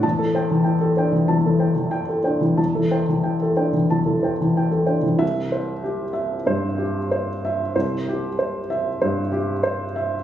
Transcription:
<<
  \new Staff \with { instrumentName = "Upright piano" } { \time 4/4 \key c \lydian \tempo 4 = 94 << { a''8 r2. r8 | r1 | e''4 r2. | r1 | } \\ { r16 a'16 <c'' g''>16 e16 g''16 a'16 <c'' g''>16 e16 a''16 a'16 <c'' g''>16 e16 g''16 a'16 <c'' g''>16 e16 | a''16 a'16 <c'' g''>16 e16 g''16 a'16 <c'' g''>16 e16 a''16 a'16 <c'' g''>16 e16 g''16 a'16 <c'' g''>16 e16 | r8 c''8 g'8 e''8 c''8 g'8 c''8 e''8 | c''8 g'8 c''8 e''8 c''8 g'8 c''8 e''8 | } >> }
  \new Staff \with { instrumentName = "Upright piano" } { \clef bass \time 4/4 \key c \lydian e,4. d'16 r16 e,16 e8 r8. d'16 r16 | e,16 e8 r8. d'16 r16 e,16 e8 r8. d'16 r16 | c,2 g,8 r4. | c,2 g,8 r4. | }
>>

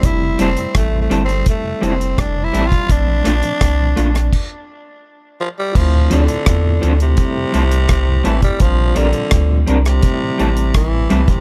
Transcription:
<<
  \new Staff \with { instrumentName = "Clean electric guitar" } { \time 4/4 \key f \major \tempo 4 = 84 r8 <g c' e' a'>8 r8 <g c' e' a'>8 r8 <g c' e' a'>8 r8 <g c' e' a'>8 | r8 <a d' f' a'>8 r8 <a d' f' a'>8 r2 | r8 <f c' d' a'>8 r8 <f c' d' a'>8 r8 <g c' e' a'>8 r8 <g c' e' a'>8 | r8 <g c' d' bes'>8 r8 <g c' d' bes'>8 r8 <g c' e' a'>8 r8 <g c' e' a'>8 | }
  \new Staff \with { instrumentName = "Tine electric piano" } { \time 4/4 \key f \major <g a c' d' e'>1 | <f a c' d'>2 r2 | <a c' e' f'>2 <g a c' e'>2 | <g c' d' f'>2 <g a c' ees' e'>2 | }
  \new Staff \with { instrumentName = "Tenor saxophone" } { \clef bass \time 4/4 \key f \major e'8 c'8 \tuplet 3/2 { a8 a8 c'8 } a8 c'8 \tuplet 3/2 { d'8 e'8 f'8 } | d'2~ d'8 r4 f16 g16 | f8 d4~ d16 c4.~ c16 e16 g16 | f8 d8. r8 c4~ c16 e8. c16 | }
  \new Staff \with { instrumentName = "Tonewheel organ" } { \clef bass \time 4/4 \key f \major << { r8 <g a e'>8 r8 <g a e'>8 r8 <g a e'>8 r8 <g a e'>8 | r8 <a bes d'>8 r8 <a bes d'>8 r2 | r8 <f c' d'>8 r8 <f c' d'>8 r8 <g a e'>8 r8 <g a e'>8 | r8 <g c' d'>8 r8 <g c' d'>8 r8 <g a c'>8 r8 <g a c'>8 | } \\ { r16 <f, c>16 r16 <f, c>16 r16 <f, c>16 r8. <f, c>16 r8. <f, c>16 r16 <f, c>16 | r16 <bes, f>16 r16 <bes, f>16 r16 <bes, f>16 r2 r8 | r16 <d, a,>16 r16 <d, a,>16 r16 <d, a,>16 r8. <f, c>16 r8. <f, c>16 r16 <f, c>16 | r16 <bes, f>16 r16 <bes, f>16 r16 <bes, f>16 r8. <a, e>16 r8. <a, e>16 r16 <a, e>16 | } >> }
  \new Staff \with { instrumentName = "Sub bass" } { \clef bass \time 4/4 \key f \major f,,8 f,,16 r16 a,,8 g,,8 r8 f,,8 f,,8 a,,16 r16 | bes,,8 bes,,16 r16 c,8 bes,,8 r2 | d,8 d,16 r16 e,8 d,8 r8 c,8 c,8 a,,16 r16 | bes,,8 bes,,16 r16 d,8 c,8 r8 a,,8 a,,8 c,16 r16 | }
  \new DrumStaff \with { instrumentName = "Drums" } \drummode { \time 4/4 <hh bd>8 hh16 hh16 <hh bd ss>8 hh16 hh16 <hh bd>8 hh16 hh16 <hh bd ss>8 hh16 <hh bd>16 | <hh bd>8 <hh ss>16 hh16 <hh bd ss>8 hh16 <hh ss>16 <cymc bd>4 r4 | <cymc bd>8 hh16 hh16 <hh bd ss>8 hh16 hh16 <hh bd>8 hh16 hh16 <hh bd ss>8 hh16 <hh bd>16 | <hh bd>8 hh16 hh16 <hh bd ss>8 hh16 <hh ss>16 <hh bd>8 hh16 hh16 <hh bd ss>8 hh16 <hh bd>16 | }
>>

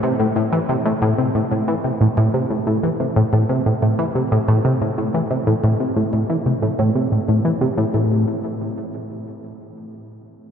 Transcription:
\new Staff \with { instrumentName = "Synth arpeggio sound" } { \clef bass \time 4/4 \key a \minor \tempo 4 = 91 c16 a,16 a,16 e16 c16 a,16 a,16 c16 a,16 a,16 e16 c16 a,16 a,16 c16 a,16 | a,16 e16 c16 a,16 a,16 c16 a,16 a,16 e16 c16 a,16 a,16 c16 a,16 a,16 e16 | c16 a,16 a,16 c16 a,16 a,16 e16 c16 a,16 a,16 c16 a,16 a,16 e16 c16 a,16 | a,8 r2. r8 | }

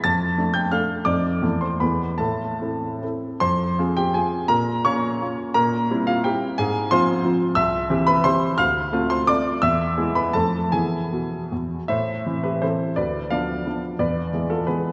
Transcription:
\new Staff \with { instrumentName = "Grand piano" } { \time 3/4 \key a \minor \tempo 4 = 172 << { <a'' a'''>4. <g'' g'''>8 <f'' f'''>4 | <d'' d'''>4. <c'' c'''>8 <b' b''>4 | <a' a''>2 r4 | \key f \minor <c'' c'''>4. <g' g''>8 <aes' aes''>4 |
<bes' bes''>4 <des'' des'''>4. r8 | <bes' bes''>4. <f' f''>8 <g' g''>4 | <aes' aes''>4 <c'' c'''>4. r8 | \key a \minor <e'' e'''>4. <b' b''>8 <c'' c'''>4 |
<f'' f'''>4. <c'' c'''>8 <d'' d'''>4 | <e'' e'''>4. <b' b''>8 <a' a''>4 | <gis' gis''>2 r4 | <c'' e''>4. <g' b'>8 <a' c''>4 |
<b' d''>4 <d'' f''>4. r8 | <b' d''>4. <f' a'>8 <gis' b'>4 | } \\ { f,4 <a d' a'>4 <a d' a'>4 | <f, c' ees' a'>4 <e, a e' a'>4 <e, b e' gis'>4 | a,4 <c' e' a'>4 <c' e' a'>4 | f,4 <c' f' aes'>4 <c' f'>4 |
bes,4 <bes des' f'>4 <bes des' f'>4 | bes,4 <g c' e'>4 <g c' e'>4 | aes,4 <f c' f'>4 <f c' f'>4 | c,4 <e c' g'>4 <e c' g'>4 |
d,4 <a c' f'>4 <a c' f'>4 | e,4 <gis b e'>4 <f, a c'>4 | <e b e'>4 b,4 e,4 | a,4 <e c' e'>4 <e c' e'>4 |
d,4 <f b d'>4 <f b d'>4 | e,4 <e gis b>4 <e gis b>4 | } >> }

